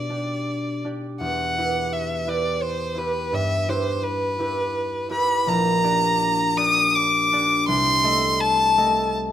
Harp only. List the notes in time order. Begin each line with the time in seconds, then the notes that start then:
Already playing: B2 B3
0.10 D4 G4 D5
0.84 D4 G4 D5
1.20 E2
1.58 E4 G4 B4
2.27 E4 G4 B4
2.95 E4 G4
3.00 B4
3.32 G2
3.68 E4 G4 B4
4.39 E4 G4 B4
5.10 E4 G4 B4
5.47 A#1
5.84 D4 G4 D5
6.57 D4 G4 D5
7.32 D4 G4 D5
7.68 C2
8.04 A3 A4 D#5
8.78 A3 A4 D#5